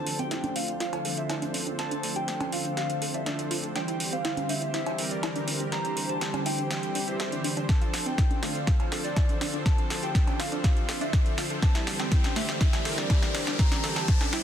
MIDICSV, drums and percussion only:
0, 0, Header, 1, 2, 480
1, 0, Start_track
1, 0, Key_signature, -1, "minor"
1, 0, Tempo, 491803
1, 1745, Time_signature, 4, 2, 24, 8
1, 14086, End_track
2, 0, Start_track
2, 0, Title_t, "Drums"
2, 64, Note_on_c, 9, 46, 99
2, 161, Note_off_c, 9, 46, 0
2, 186, Note_on_c, 9, 42, 36
2, 284, Note_off_c, 9, 42, 0
2, 304, Note_on_c, 9, 38, 47
2, 304, Note_on_c, 9, 42, 66
2, 401, Note_off_c, 9, 38, 0
2, 401, Note_off_c, 9, 42, 0
2, 427, Note_on_c, 9, 42, 39
2, 427, Note_on_c, 9, 63, 94
2, 524, Note_off_c, 9, 42, 0
2, 525, Note_off_c, 9, 63, 0
2, 544, Note_on_c, 9, 46, 105
2, 642, Note_off_c, 9, 46, 0
2, 667, Note_on_c, 9, 42, 40
2, 764, Note_off_c, 9, 42, 0
2, 785, Note_on_c, 9, 38, 49
2, 785, Note_on_c, 9, 42, 66
2, 882, Note_off_c, 9, 38, 0
2, 882, Note_off_c, 9, 42, 0
2, 907, Note_on_c, 9, 42, 38
2, 907, Note_on_c, 9, 56, 75
2, 1004, Note_off_c, 9, 42, 0
2, 1005, Note_off_c, 9, 56, 0
2, 1024, Note_on_c, 9, 46, 99
2, 1122, Note_off_c, 9, 46, 0
2, 1147, Note_on_c, 9, 42, 40
2, 1244, Note_off_c, 9, 42, 0
2, 1264, Note_on_c, 9, 38, 48
2, 1264, Note_on_c, 9, 42, 66
2, 1264, Note_on_c, 9, 56, 90
2, 1362, Note_off_c, 9, 38, 0
2, 1362, Note_off_c, 9, 42, 0
2, 1362, Note_off_c, 9, 56, 0
2, 1387, Note_on_c, 9, 42, 40
2, 1485, Note_off_c, 9, 42, 0
2, 1505, Note_on_c, 9, 46, 97
2, 1602, Note_off_c, 9, 46, 0
2, 1627, Note_on_c, 9, 42, 39
2, 1725, Note_off_c, 9, 42, 0
2, 1745, Note_on_c, 9, 38, 50
2, 1745, Note_on_c, 9, 42, 63
2, 1842, Note_off_c, 9, 38, 0
2, 1842, Note_off_c, 9, 42, 0
2, 1868, Note_on_c, 9, 42, 38
2, 1965, Note_off_c, 9, 42, 0
2, 1985, Note_on_c, 9, 46, 106
2, 2083, Note_off_c, 9, 46, 0
2, 2108, Note_on_c, 9, 42, 36
2, 2205, Note_off_c, 9, 42, 0
2, 2225, Note_on_c, 9, 38, 53
2, 2225, Note_on_c, 9, 42, 64
2, 2323, Note_off_c, 9, 38, 0
2, 2323, Note_off_c, 9, 42, 0
2, 2347, Note_on_c, 9, 42, 37
2, 2347, Note_on_c, 9, 56, 92
2, 2347, Note_on_c, 9, 63, 93
2, 2445, Note_off_c, 9, 42, 0
2, 2445, Note_off_c, 9, 56, 0
2, 2445, Note_off_c, 9, 63, 0
2, 2464, Note_on_c, 9, 46, 104
2, 2561, Note_off_c, 9, 46, 0
2, 2587, Note_on_c, 9, 42, 38
2, 2684, Note_off_c, 9, 42, 0
2, 2705, Note_on_c, 9, 38, 55
2, 2705, Note_on_c, 9, 42, 63
2, 2802, Note_off_c, 9, 38, 0
2, 2802, Note_off_c, 9, 42, 0
2, 2827, Note_on_c, 9, 42, 39
2, 2925, Note_off_c, 9, 42, 0
2, 2945, Note_on_c, 9, 46, 101
2, 3043, Note_off_c, 9, 46, 0
2, 3067, Note_on_c, 9, 42, 39
2, 3165, Note_off_c, 9, 42, 0
2, 3185, Note_on_c, 9, 38, 55
2, 3185, Note_on_c, 9, 42, 63
2, 3282, Note_off_c, 9, 38, 0
2, 3282, Note_off_c, 9, 42, 0
2, 3308, Note_on_c, 9, 42, 38
2, 3405, Note_off_c, 9, 42, 0
2, 3425, Note_on_c, 9, 46, 104
2, 3522, Note_off_c, 9, 46, 0
2, 3548, Note_on_c, 9, 42, 38
2, 3646, Note_off_c, 9, 42, 0
2, 3666, Note_on_c, 9, 38, 54
2, 3666, Note_on_c, 9, 42, 61
2, 3763, Note_off_c, 9, 38, 0
2, 3763, Note_off_c, 9, 42, 0
2, 3788, Note_on_c, 9, 42, 39
2, 3886, Note_off_c, 9, 42, 0
2, 3905, Note_on_c, 9, 46, 106
2, 4003, Note_off_c, 9, 46, 0
2, 4028, Note_on_c, 9, 42, 36
2, 4126, Note_off_c, 9, 42, 0
2, 4145, Note_on_c, 9, 38, 60
2, 4145, Note_on_c, 9, 42, 62
2, 4243, Note_off_c, 9, 38, 0
2, 4243, Note_off_c, 9, 42, 0
2, 4268, Note_on_c, 9, 42, 36
2, 4268, Note_on_c, 9, 63, 95
2, 4365, Note_off_c, 9, 63, 0
2, 4366, Note_off_c, 9, 42, 0
2, 4385, Note_on_c, 9, 46, 108
2, 4483, Note_off_c, 9, 46, 0
2, 4508, Note_on_c, 9, 42, 38
2, 4605, Note_off_c, 9, 42, 0
2, 4626, Note_on_c, 9, 38, 58
2, 4626, Note_on_c, 9, 42, 64
2, 4723, Note_off_c, 9, 38, 0
2, 4723, Note_off_c, 9, 42, 0
2, 4748, Note_on_c, 9, 42, 38
2, 4748, Note_on_c, 9, 56, 82
2, 4845, Note_off_c, 9, 42, 0
2, 4845, Note_off_c, 9, 56, 0
2, 4865, Note_on_c, 9, 46, 104
2, 4963, Note_off_c, 9, 46, 0
2, 4988, Note_on_c, 9, 42, 36
2, 5085, Note_off_c, 9, 42, 0
2, 5105, Note_on_c, 9, 38, 61
2, 5105, Note_on_c, 9, 42, 62
2, 5105, Note_on_c, 9, 56, 96
2, 5202, Note_off_c, 9, 38, 0
2, 5202, Note_off_c, 9, 42, 0
2, 5203, Note_off_c, 9, 56, 0
2, 5228, Note_on_c, 9, 42, 37
2, 5325, Note_off_c, 9, 42, 0
2, 5345, Note_on_c, 9, 46, 104
2, 5442, Note_off_c, 9, 46, 0
2, 5584, Note_on_c, 9, 38, 62
2, 5584, Note_on_c, 9, 42, 58
2, 5682, Note_off_c, 9, 38, 0
2, 5682, Note_off_c, 9, 42, 0
2, 5707, Note_on_c, 9, 42, 36
2, 5805, Note_off_c, 9, 42, 0
2, 5824, Note_on_c, 9, 46, 106
2, 5922, Note_off_c, 9, 46, 0
2, 5947, Note_on_c, 9, 42, 36
2, 6044, Note_off_c, 9, 42, 0
2, 6065, Note_on_c, 9, 38, 68
2, 6065, Note_on_c, 9, 42, 62
2, 6162, Note_off_c, 9, 38, 0
2, 6162, Note_off_c, 9, 42, 0
2, 6186, Note_on_c, 9, 42, 37
2, 6186, Note_on_c, 9, 56, 94
2, 6186, Note_on_c, 9, 63, 91
2, 6284, Note_off_c, 9, 42, 0
2, 6284, Note_off_c, 9, 56, 0
2, 6284, Note_off_c, 9, 63, 0
2, 6303, Note_on_c, 9, 46, 112
2, 6401, Note_off_c, 9, 46, 0
2, 6426, Note_on_c, 9, 42, 36
2, 6524, Note_off_c, 9, 42, 0
2, 6545, Note_on_c, 9, 38, 68
2, 6545, Note_on_c, 9, 42, 64
2, 6642, Note_off_c, 9, 38, 0
2, 6642, Note_off_c, 9, 42, 0
2, 6667, Note_on_c, 9, 42, 36
2, 6765, Note_off_c, 9, 42, 0
2, 6785, Note_on_c, 9, 46, 104
2, 6882, Note_off_c, 9, 46, 0
2, 6908, Note_on_c, 9, 42, 36
2, 7005, Note_off_c, 9, 42, 0
2, 7025, Note_on_c, 9, 38, 68
2, 7025, Note_on_c, 9, 42, 63
2, 7122, Note_off_c, 9, 38, 0
2, 7122, Note_off_c, 9, 42, 0
2, 7147, Note_on_c, 9, 42, 37
2, 7245, Note_off_c, 9, 42, 0
2, 7266, Note_on_c, 9, 46, 104
2, 7363, Note_off_c, 9, 46, 0
2, 7388, Note_on_c, 9, 42, 36
2, 7486, Note_off_c, 9, 42, 0
2, 7505, Note_on_c, 9, 38, 73
2, 7505, Note_on_c, 9, 42, 62
2, 7506, Note_on_c, 9, 36, 119
2, 7603, Note_off_c, 9, 36, 0
2, 7603, Note_off_c, 9, 38, 0
2, 7603, Note_off_c, 9, 42, 0
2, 7628, Note_on_c, 9, 42, 38
2, 7725, Note_off_c, 9, 42, 0
2, 7745, Note_on_c, 9, 38, 74
2, 7745, Note_on_c, 9, 46, 100
2, 7843, Note_off_c, 9, 38, 0
2, 7843, Note_off_c, 9, 46, 0
2, 7868, Note_on_c, 9, 42, 37
2, 7966, Note_off_c, 9, 42, 0
2, 7985, Note_on_c, 9, 38, 76
2, 7985, Note_on_c, 9, 42, 63
2, 7986, Note_on_c, 9, 36, 120
2, 8083, Note_off_c, 9, 36, 0
2, 8083, Note_off_c, 9, 38, 0
2, 8083, Note_off_c, 9, 42, 0
2, 8107, Note_on_c, 9, 63, 88
2, 8108, Note_on_c, 9, 42, 38
2, 8204, Note_off_c, 9, 63, 0
2, 8205, Note_off_c, 9, 42, 0
2, 8224, Note_on_c, 9, 38, 78
2, 8224, Note_on_c, 9, 46, 104
2, 8322, Note_off_c, 9, 38, 0
2, 8322, Note_off_c, 9, 46, 0
2, 8347, Note_on_c, 9, 42, 37
2, 8445, Note_off_c, 9, 42, 0
2, 8465, Note_on_c, 9, 38, 75
2, 8465, Note_on_c, 9, 42, 62
2, 8466, Note_on_c, 9, 36, 118
2, 8562, Note_off_c, 9, 38, 0
2, 8562, Note_off_c, 9, 42, 0
2, 8563, Note_off_c, 9, 36, 0
2, 8587, Note_on_c, 9, 42, 37
2, 8587, Note_on_c, 9, 56, 79
2, 8684, Note_off_c, 9, 56, 0
2, 8685, Note_off_c, 9, 42, 0
2, 8705, Note_on_c, 9, 38, 77
2, 8705, Note_on_c, 9, 46, 99
2, 8802, Note_off_c, 9, 38, 0
2, 8802, Note_off_c, 9, 46, 0
2, 8828, Note_on_c, 9, 42, 37
2, 8925, Note_off_c, 9, 42, 0
2, 8944, Note_on_c, 9, 56, 94
2, 8945, Note_on_c, 9, 36, 120
2, 8945, Note_on_c, 9, 38, 78
2, 8945, Note_on_c, 9, 42, 61
2, 9042, Note_off_c, 9, 38, 0
2, 9042, Note_off_c, 9, 42, 0
2, 9042, Note_off_c, 9, 56, 0
2, 9043, Note_off_c, 9, 36, 0
2, 9068, Note_on_c, 9, 42, 37
2, 9166, Note_off_c, 9, 42, 0
2, 9185, Note_on_c, 9, 38, 79
2, 9185, Note_on_c, 9, 46, 107
2, 9283, Note_off_c, 9, 38, 0
2, 9283, Note_off_c, 9, 46, 0
2, 9308, Note_on_c, 9, 42, 36
2, 9406, Note_off_c, 9, 42, 0
2, 9426, Note_on_c, 9, 36, 117
2, 9426, Note_on_c, 9, 38, 80
2, 9426, Note_on_c, 9, 42, 62
2, 9523, Note_off_c, 9, 36, 0
2, 9524, Note_off_c, 9, 38, 0
2, 9524, Note_off_c, 9, 42, 0
2, 9548, Note_on_c, 9, 42, 38
2, 9646, Note_off_c, 9, 42, 0
2, 9666, Note_on_c, 9, 38, 79
2, 9666, Note_on_c, 9, 46, 98
2, 9764, Note_off_c, 9, 38, 0
2, 9764, Note_off_c, 9, 46, 0
2, 9789, Note_on_c, 9, 42, 38
2, 9886, Note_off_c, 9, 42, 0
2, 9906, Note_on_c, 9, 36, 121
2, 9906, Note_on_c, 9, 38, 86
2, 9906, Note_on_c, 9, 42, 68
2, 10003, Note_off_c, 9, 36, 0
2, 10004, Note_off_c, 9, 38, 0
2, 10004, Note_off_c, 9, 42, 0
2, 10028, Note_on_c, 9, 42, 39
2, 10028, Note_on_c, 9, 56, 91
2, 10028, Note_on_c, 9, 63, 85
2, 10125, Note_off_c, 9, 56, 0
2, 10125, Note_off_c, 9, 63, 0
2, 10126, Note_off_c, 9, 42, 0
2, 10146, Note_on_c, 9, 38, 86
2, 10146, Note_on_c, 9, 46, 99
2, 10244, Note_off_c, 9, 38, 0
2, 10244, Note_off_c, 9, 46, 0
2, 10269, Note_on_c, 9, 42, 39
2, 10366, Note_off_c, 9, 42, 0
2, 10386, Note_on_c, 9, 36, 109
2, 10386, Note_on_c, 9, 38, 87
2, 10386, Note_on_c, 9, 42, 65
2, 10483, Note_off_c, 9, 36, 0
2, 10484, Note_off_c, 9, 38, 0
2, 10484, Note_off_c, 9, 42, 0
2, 10508, Note_on_c, 9, 42, 38
2, 10606, Note_off_c, 9, 42, 0
2, 10625, Note_on_c, 9, 38, 86
2, 10625, Note_on_c, 9, 46, 101
2, 10723, Note_off_c, 9, 38, 0
2, 10723, Note_off_c, 9, 46, 0
2, 10748, Note_on_c, 9, 42, 37
2, 10846, Note_off_c, 9, 42, 0
2, 10865, Note_on_c, 9, 38, 88
2, 10865, Note_on_c, 9, 42, 64
2, 10866, Note_on_c, 9, 36, 121
2, 10963, Note_off_c, 9, 36, 0
2, 10963, Note_off_c, 9, 38, 0
2, 10963, Note_off_c, 9, 42, 0
2, 10988, Note_on_c, 9, 42, 38
2, 11085, Note_off_c, 9, 42, 0
2, 11105, Note_on_c, 9, 38, 90
2, 11105, Note_on_c, 9, 46, 98
2, 11203, Note_off_c, 9, 38, 0
2, 11203, Note_off_c, 9, 46, 0
2, 11228, Note_on_c, 9, 42, 38
2, 11326, Note_off_c, 9, 42, 0
2, 11346, Note_on_c, 9, 36, 117
2, 11346, Note_on_c, 9, 38, 86
2, 11346, Note_on_c, 9, 42, 67
2, 11443, Note_off_c, 9, 36, 0
2, 11443, Note_off_c, 9, 38, 0
2, 11443, Note_off_c, 9, 42, 0
2, 11468, Note_on_c, 9, 38, 85
2, 11468, Note_on_c, 9, 42, 41
2, 11566, Note_off_c, 9, 38, 0
2, 11566, Note_off_c, 9, 42, 0
2, 11586, Note_on_c, 9, 38, 90
2, 11586, Note_on_c, 9, 46, 100
2, 11683, Note_off_c, 9, 38, 0
2, 11683, Note_off_c, 9, 46, 0
2, 11708, Note_on_c, 9, 38, 82
2, 11708, Note_on_c, 9, 42, 41
2, 11806, Note_off_c, 9, 38, 0
2, 11806, Note_off_c, 9, 42, 0
2, 11825, Note_on_c, 9, 38, 96
2, 11825, Note_on_c, 9, 42, 70
2, 11826, Note_on_c, 9, 36, 121
2, 11923, Note_off_c, 9, 36, 0
2, 11923, Note_off_c, 9, 38, 0
2, 11923, Note_off_c, 9, 42, 0
2, 11947, Note_on_c, 9, 63, 90
2, 11948, Note_on_c, 9, 38, 83
2, 11948, Note_on_c, 9, 42, 39
2, 12045, Note_off_c, 9, 63, 0
2, 12046, Note_off_c, 9, 38, 0
2, 12046, Note_off_c, 9, 42, 0
2, 12065, Note_on_c, 9, 38, 97
2, 12065, Note_on_c, 9, 46, 103
2, 12163, Note_off_c, 9, 38, 0
2, 12163, Note_off_c, 9, 46, 0
2, 12187, Note_on_c, 9, 38, 87
2, 12187, Note_on_c, 9, 42, 42
2, 12285, Note_off_c, 9, 38, 0
2, 12285, Note_off_c, 9, 42, 0
2, 12305, Note_on_c, 9, 36, 112
2, 12305, Note_on_c, 9, 38, 100
2, 12305, Note_on_c, 9, 42, 70
2, 12402, Note_off_c, 9, 38, 0
2, 12402, Note_off_c, 9, 42, 0
2, 12403, Note_off_c, 9, 36, 0
2, 12427, Note_on_c, 9, 38, 88
2, 12427, Note_on_c, 9, 42, 41
2, 12427, Note_on_c, 9, 56, 76
2, 12524, Note_off_c, 9, 38, 0
2, 12524, Note_off_c, 9, 42, 0
2, 12524, Note_off_c, 9, 56, 0
2, 12545, Note_on_c, 9, 38, 96
2, 12545, Note_on_c, 9, 46, 101
2, 12642, Note_off_c, 9, 38, 0
2, 12642, Note_off_c, 9, 46, 0
2, 12668, Note_on_c, 9, 38, 85
2, 12668, Note_on_c, 9, 42, 41
2, 12765, Note_off_c, 9, 38, 0
2, 12765, Note_off_c, 9, 42, 0
2, 12784, Note_on_c, 9, 56, 91
2, 12785, Note_on_c, 9, 36, 122
2, 12785, Note_on_c, 9, 38, 100
2, 12785, Note_on_c, 9, 42, 69
2, 12882, Note_off_c, 9, 56, 0
2, 12883, Note_off_c, 9, 36, 0
2, 12883, Note_off_c, 9, 38, 0
2, 12883, Note_off_c, 9, 42, 0
2, 12908, Note_on_c, 9, 38, 89
2, 12908, Note_on_c, 9, 42, 40
2, 13006, Note_off_c, 9, 38, 0
2, 13006, Note_off_c, 9, 42, 0
2, 13026, Note_on_c, 9, 38, 97
2, 13026, Note_on_c, 9, 46, 101
2, 13123, Note_off_c, 9, 38, 0
2, 13123, Note_off_c, 9, 46, 0
2, 13148, Note_on_c, 9, 38, 84
2, 13148, Note_on_c, 9, 42, 39
2, 13245, Note_off_c, 9, 38, 0
2, 13245, Note_off_c, 9, 42, 0
2, 13265, Note_on_c, 9, 36, 123
2, 13265, Note_on_c, 9, 38, 98
2, 13265, Note_on_c, 9, 42, 71
2, 13363, Note_off_c, 9, 36, 0
2, 13363, Note_off_c, 9, 38, 0
2, 13363, Note_off_c, 9, 42, 0
2, 13387, Note_on_c, 9, 38, 94
2, 13387, Note_on_c, 9, 42, 43
2, 13387, Note_on_c, 9, 63, 82
2, 13484, Note_off_c, 9, 63, 0
2, 13485, Note_off_c, 9, 38, 0
2, 13485, Note_off_c, 9, 42, 0
2, 13505, Note_on_c, 9, 38, 100
2, 13505, Note_on_c, 9, 46, 102
2, 13603, Note_off_c, 9, 38, 0
2, 13603, Note_off_c, 9, 46, 0
2, 13627, Note_on_c, 9, 38, 86
2, 13627, Note_on_c, 9, 42, 40
2, 13725, Note_off_c, 9, 38, 0
2, 13725, Note_off_c, 9, 42, 0
2, 13745, Note_on_c, 9, 36, 122
2, 13745, Note_on_c, 9, 38, 104
2, 13745, Note_on_c, 9, 42, 70
2, 13842, Note_off_c, 9, 38, 0
2, 13842, Note_off_c, 9, 42, 0
2, 13843, Note_off_c, 9, 36, 0
2, 13867, Note_on_c, 9, 38, 89
2, 13867, Note_on_c, 9, 42, 42
2, 13867, Note_on_c, 9, 56, 89
2, 13867, Note_on_c, 9, 63, 97
2, 13964, Note_off_c, 9, 56, 0
2, 13964, Note_off_c, 9, 63, 0
2, 13965, Note_off_c, 9, 38, 0
2, 13965, Note_off_c, 9, 42, 0
2, 13984, Note_on_c, 9, 38, 107
2, 13984, Note_on_c, 9, 46, 104
2, 14082, Note_off_c, 9, 38, 0
2, 14082, Note_off_c, 9, 46, 0
2, 14086, End_track
0, 0, End_of_file